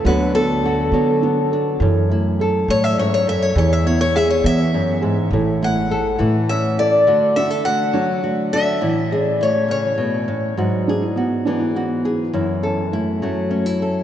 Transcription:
Already playing: A3 C#4
0.04 D2 D3 F#3 B3 D4 A4 B4
0.08 F#4
0.34 B3 D4 A4
0.63 F#4 A4
0.92 D3 F#3 B3 D4
1.22 B3 D4
1.51 D4 A4
1.80 F#2 E3 A4
2.09 A3 E4
2.39 A4
2.68 A2 F#3 A3 C#5
2.84 E5
2.98 G#2 C#4 C#5
3.14 C#5
3.27 F#2 A4 E5
3.42 C#5
3.55 E2 E3 G#4 C#5
3.73 E5
3.86 B3 E4 C#5
4.01 C#5
4.16 G#4 E5
4.30 C#5
4.44 E2 E3 B3 E5
4.74 F#2 C#4
5.01 G#2 G#4
5.31 A1 A2 E3 A4
5.61 A3 E4 F#5
5.91 A4
6.19 A2 E3 A3 E4
6.49 C#4 E5
6.78 E4 A4 D5
7.07 D3 A3 F#4
7.36 D4 F#4 E5
7.51 A4
7.65 A3 F#4 F#5
7.93 F#3 A3 D4
8.24 A3 F#4
8.53 D4 A4 E5
8.81 A2 E3 E4
9.12 C#4 G#4
9.18 D5
9.41 A3 E4 C#5
9.68 C#3 C#4 C#5
9.98 B2 A3
10.28 A2 C#4
10.57 G#2 F#3 F#4
10.88 D4 G#4
11.02 E4
11.16 B3 F#4
11.45 E3 B3 D4
11.59 E4
11.75 B3 F#4
12.04 E4 G#4
12.33 F#2 E3 E4
12.63 C#4 A4
12.92 A3 E4
13.22 F#3 A3 C#4
13.50 A3 C#4
13.66 E4
13.80 C#4 A4

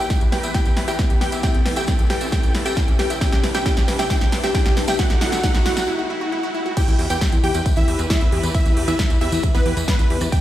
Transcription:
Already playing: E3 E4 G4 B4, riser
0.00 G4 G5
0.10 E4, kick, snare, closed hi-hat, tambourine
0.21 E2 G4, closed hi-hat, tambourine
0.32 E2 G4 B4 G5, snare, open hi-hat
0.43 E2 E5, closed hi-hat, tambourine
0.54 E4 G4 G5, kick, snare, closed hi-hat, tambourine
0.65 E2 G4, closed hi-hat, tambourine
0.77 E2 B4, snare, open hi-hat
0.88 E2 G4 E5 G5, closed hi-hat, tambourine
0.99 E4, kick, snare, closed hi-hat, tambourine
1.10 E2 G4, closed hi-hat, tambourine
1.21 E2 G4 B4 G5, snare, open hi-hat
1.32 E2 E5, closed hi-hat, tambourine
1.43 E4 G4 A4 G5, kick, snare, closed hi-hat, tambourine
1.54 E2 G4, closed hi-hat, tambourine
1.66 E2 B4, snare, open hi-hat
1.76 E2 G4 E5 G5, closed hi-hat, tambourine
1.87 E4, kick, snare, closed hi-hat, tambourine
1.99 E2 G4, closed hi-hat, tambourine
2.10 E2 G4 B4 G5, snare, open hi-hat
2.21 E2 E5, closed hi-hat, tambourine
2.32 E4 G4 G5, kick, snare, closed hi-hat, tambourine
2.43 E2 G4, closed hi-hat, tambourine
2.55 E2 B4, snare, open hi-hat
2.65 E2 G4 E5 G5, closed hi-hat, tambourine
2.76 E4, kick, snare, closed hi-hat, tambourine
2.88 E2 G4, closed hi-hat, tambourine
2.99 E2 G4 B4 G5, snare, open hi-hat
3.10 E2 E5, closed hi-hat, tambourine
3.21 C3 C4 D4 E4 G4 G5, kick, snare, closed hi-hat, tambourine
3.32 C2 G4, snare, closed hi-hat, tambourine
3.43 C2 B4, snare, open hi-hat
3.54 C2 G4 E5 G5, snare, closed hi-hat, tambourine
3.66 E4 G4 G5, kick, snare, closed hi-hat, tambourine
3.77 C2 G4, snare, closed hi-hat, tambourine
3.88 C2 B4, snare, open hi-hat
3.99 C2 G4 E5 G5, snare, closed hi-hat, tambourine
4.10 E4 G4 G5, kick, snare, closed hi-hat, tambourine
4.21 C2 G4, snare, closed hi-hat, tambourine
4.32 C2 B4, snare, open hi-hat
4.43 C2 G4 E5 G5, snare, closed hi-hat, tambourine
4.54 E4 G4 G5, kick, snare, closed hi-hat, tambourine
4.66 C2 G4, snare, closed hi-hat, tambourine
4.77 C2 B4, snare, open hi-hat
4.88 C2 G4 E5 G5, snare, closed hi-hat, tambourine
4.99 D3 E4 F#4 A4 F#5, kick, snare, closed hi-hat, tambourine
5.10 D2 F#4, snare, closed hi-hat, tambourine
5.21 D2 E4 F#4 F#5, snare, open hi-hat
5.32 D2 F#4, snare, closed hi-hat, tambourine
5.43 E4 F#4 F#5, kick, snare, closed hi-hat, tambourine
5.54 D2 F#4, snare, closed hi-hat, tambourine
5.66 D2 E4 F#4 F#5, snare, open hi-hat
5.77 D2 F#4, snare, closed hi-hat, tambourine
5.88 E4
5.99 F#4
6.10 E4
6.21 F#4
6.32 E4
6.43 F#4
6.55 E4
6.66 F#4
6.77 E3 E4 G4 B4 G5, kick, closed hi-hat, ride, tambourine, crash
6.88 E2, closed hi-hat, tambourine
6.99 E2 G4, open hi-hat
7.10 E2 G4 B4 G5, closed hi-hat, tambourine
7.21 E5, kick, snare, closed hi-hat, ride, tambourine
7.32 E2 E4, closed hi-hat, tambourine
7.43 E2 G4 G5, open hi-hat
7.54 E2 B4, closed hi-hat, tambourine
7.66 E5, kick, closed hi-hat, ride, tambourine
7.76 E2 E4 E5, closed hi-hat, tambourine
7.88 E2 G4, open hi-hat
7.99 E2 B4, closed hi-hat, tambourine
8.10 E4 E5, kick, snare, closed hi-hat, ride, tambourine
8.21 E2 E4, closed hi-hat, tambourine
8.32 E2 G4, open hi-hat
8.43 E2 B4, closed hi-hat, tambourine
8.54 E4 E5, kick, closed hi-hat, ride, tambourine
8.66 E2, closed hi-hat, tambourine
8.77 E2 G4, open hi-hat
8.88 E2 E4 B4 E5, closed hi-hat, tambourine
8.99 E5, kick, snare, closed hi-hat, ride, tambourine
9.10 E2 E4, closed hi-hat, tambourine
9.21 E2 E4 G4 E5, open hi-hat
9.32 E2 B4, closed hi-hat, tambourine
9.43 E5, kick, closed hi-hat, ride, tambourine
9.54 E2 B3 E4 B4, snare, closed hi-hat, tambourine
9.66 E2 G4, open hi-hat
9.77 E2 B4, closed hi-hat, tambourine
9.88 B3 B4 E5, kick, snare, closed hi-hat, ride
9.99 E2 E4, closed hi-hat, tambourine
10.10 E2 G4, open hi-hat
10.21 E2 B4, cross-stick, closed hi-hat, tambourine
10.32 C3 C4 D4 G4 G5, kick, closed hi-hat, ride, tambourine

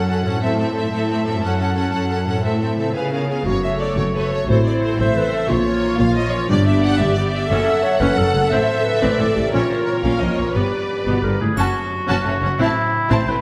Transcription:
Already playing: F#2 C#4 F#4 A4
0.06 C#4 A4 F#5
0.22 A2 C#4 A4 F#5
0.27 C4
0.31 E4
0.36 A4
0.40 A2 C4 A4 E5
0.54 A4
0.59 C4 E5
0.71 C4 A4
0.76 E5
0.90 A2 C4 A4 E5
1.06 C4 A4 E5
1.24 F#2 C4 A4 E5
1.29 C#4
1.33 F#4
1.38 A4
1.42 F#2 C#4 F#5
1.56 C#4 A4 F#5
1.73 C#4 A4 F#5
1.89 F#2 C#4 A4 F#5
2.07 C#4 A4 F#5
2.24 A2 C#4 A4 F#5
2.29 C4
2.34 E4
2.38 A4
2.42 A2 C4 A4 E5
2.58 C4 A4 E5
2.76 C#3 C4 A4 E5
2.80 B3
2.85 F4
2.89 G#4
2.94 C#3 B3 G#4 B4 F5
3.12 B3 G#4 A#4 F5
3.28 B3 G#4 F5
3.45 F#1 F#2 F#4 C#5
3.63 A3 A4 C#5 E5
3.80 B3 D5
3.97 F#1 F#2 A3 F#4 C#5
4.14 C#3 A3 A4 B4 C#5
4.30 A3 C#5
4.48 A1 A2 C4 E4 A4 C5
4.65 A3 C4 A4 C5 D5
4.81 B3 C5
4.98 A1 A2 A3 C5 E5
5.15 E3 C4 A4 B4 C5
5.32 A3 A4
5.48 A#1 A#2 F4 C#5
5.66 A#3 C#4 F4 C#5
5.83 D#4
5.99 A#1 A#2 C#4 F4 F5
6.16 F3 A#3 F4 C#5 D#5
6.32 C#4 C#5
6.49 G1 G2 B3 D4 G4 D5
6.66 B3 G4 D5 E5
6.83 C#4 F#5
6.98 G1 G2 B3 G4 E5
7.15 D3 B3 G4 D5
7.32 B3 E5
7.49 F#1 F#2 C#4 A4 F#5
7.67 C#4
7.83 D4 C#5
8.00 F#1 F#2 C#4 B4 F#5
8.17 F#1 F#2 C#3 F#3 A4
8.34 F#1 F#2 A3 C#4
8.51 A1 A2 C4 C5 E5
8.69 C4
8.85 D4 B4
9.01 A1 A2 C4 B4 D5
9.18 A1 A2 E3 A4
9.35 A1 A2 A3 C4 G4
9.52 A#1 A#2 C#4 F4 A#4 C#5
9.71 A#3 C5
9.87 C4 C#5
10.03 A#1 A#2 A#3 C#4 F4 F5
10.21 A#1 A#2 F3 D#5
10.37 A#1 A#2 A#3 C#5
10.54 G1 G2 B3 G4 B4 D5
10.71 B3
10.90 C#4
11.06 G1 B2 B3 B4
11.23 G1 G2 D3 A#4
11.40 G1 A2 G3 B3 G#4
11.57 F#1 F#2 C#4 F#4 A5, triangle
11.75 C#4
11.92 D4
12.09 F#1 F#2 C#4 F#4 A5
12.25 F#1 F#2 C#3 A3 C#4 C#5
12.42 F#1 F#2 C#4 F#5
12.59 A1 A2 C4 E4 A5
12.77 C4
12.95 D4
13.09 A1 A2 C4 E4 C5 A5
13.28 A1 A2 E3 A3 C4 B4 C5

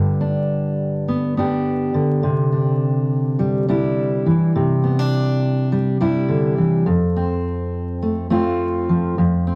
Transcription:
Already playing: G2 D3 D4 G4
0.21 D4
1.08 B3
1.37 B3 D4 G4
1.94 D3
2.23 C3
2.53 D4
3.39 G3
3.69 G3 D4 E4
4.26 E3
4.55 C3
4.84 B3
4.99 D4
5.72 G3
6.01 G3 D4 E4
6.28 D3
6.58 E3
6.86 F2
7.17 C4
8.02 A3
8.30 A3 C4 F4
8.89 F3
9.18 F2
9.47 C4

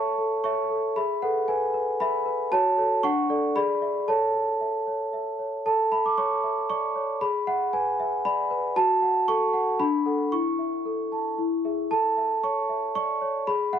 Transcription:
Already playing: A4 C#5 E5 A5 C#6
0.18 A4
0.44 C#5 E5 C#6
0.70 A4
0.96 G#4 E5 B5
1.22 A4 B4 F#5
1.48 B4 E5 G#5
1.74 B4
2.00 E5 B5
2.26 B4
2.51 F#4 C#5 A5
2.78 A4 C#5
3.03 D4 F#5 C#6
3.29 A4 D5
3.56 G#4 D5 B5
3.82 D5 E5
4.08 A4 C#5 A5
4.34 C#5
4.61 E5
4.87 C#5
5.13 E5
5.39 C#5
5.66 A4 A5
5.92 E5 B5
6.06 D6
6.18 C#5 C#6
6.44 E5
6.69 D5 C#6
6.96 C#5
7.21 G#4 B5
7.47 E5 F#5
7.73 B4 G#5
8.00 E5
8.25 D5 B5
8.51 B4
8.76 F#4 A5
9.02 F#5
9.28 A4 C#6
9.53 F#5
9.80 D4 B5
10.06 A4 F#5
10.32 E4 C#6
10.59 E5
10.85 A4
11.12 A5
11.38 E4
11.65 G#4 E5
11.91 A4 A5
12.17 E5
12.44 C#5 C#6
12.69 E5
12.95 D5 C#6
13.22 C#5
13.47 G#4 B5
13.73 E5 F#5

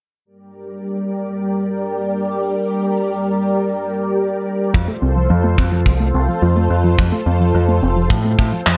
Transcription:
0.25 G3 G4 A#4 D5
4.74 F2 F3 F4 A4 C5, kick
4.88 A3
5.02 C2 C4
5.16 F3
5.30 F2 F3
5.44 A3
5.58 F2 C4, kick
5.72 F3
5.86 C2 F3, kick
6.00 A3
6.14 C2 C4
6.28 F3
6.42 F2 F3
6.56 A3
6.70 F2 C4
6.84 F3
6.98 F2 F3, kick
7.12 A3
7.26 F2 C4
7.40 F3
7.54 F2 F3
7.68 A3
7.82 F1 C4
7.97 F3
8.10 A2 F3, kick
8.25 A3
8.39 A2 C4, kick
8.53 F3
8.67 F2 F3, clap

